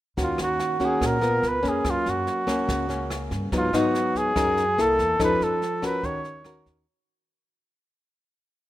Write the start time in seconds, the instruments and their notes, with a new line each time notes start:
0.17 upright bass D#2, nylon-string guitar D#3 A#3 C#4 F#4, kick, snare
0.23 flugelhorn F4
0.38 upright bass D#2, cross-stick, snare
0.43 flugelhorn F#4
0.59 tine electric piano F#5, snare
0.80 nylon-string guitar A#3 C#4 F#4, kick, snare
0.85 flugelhorn G#4
1.00 upright bass A#1, nylon-string guitar A#2, kick, cross-stick, snare
1.07 flugelhorn A#4
1.21 nylon-string guitar B3 F4 A#4, snare
1.43 upright bass C#2, snare
1.48 flugelhorn B4
1.63 upright bass F2, nylon-string guitar A#3 C#4, kick, snare
1.69 flugelhorn G#4
1.85 upright bass F#2, nylon-string guitar F#3, kick, cross-stick, snare
1.90 flugelhorn F4
2.06 upright bass F#2, flugelhorn F#4, snare
2.27 snare
2.47 nylon-string guitar A#3 C#4, kick, cross-stick, snare
2.67 upright bass C#2, nylon-string guitar C#3, kick, snare
2.89 nylon-string guitar A#3 C#4, snare
3.10 cross-stick, snare
3.31 upright bass G2, kick, snare
3.52 upright bass G#2, nylon-string guitar G#2 F#3 B3 D#4, kick, snare
3.57 flugelhorn F4
3.73 upright bass G#2, nylon-string guitar F#3 B3 D#4, cross-stick, snare
3.77 flugelhorn F#4
3.95 snare
4.15 flugelhorn G#4, kick, snare
4.36 upright bass F#2, nylon-string guitar F#3 C#4 D#4 A#4, kick, cross-stick, snare
4.57 snare
4.78 upright bass C2, nylon-string guitar A#3 E4 A4, flugelhorn A4, snare
4.99 upright bass E2, kick, snare
5.19 upright bass F2, nylon-string guitar F3 C#4 D#4 A4, kick, cross-stick, snare
5.24 flugelhorn B4
5.40 upright bass F2, flugelhorn A4, snare
5.62 snare
5.82 nylon-string guitar C#4 F#4 A#4, flugelhorn B4, kick, cross-stick, snare
6.03 upright bass D#2, nylon-string guitar D#3, flugelhorn C#5, kick, snare
6.24 snare
6.44 nylon-string guitar C#4 F#4 A#4, cross-stick, snare
6.66 upright bass D#2, kick, snare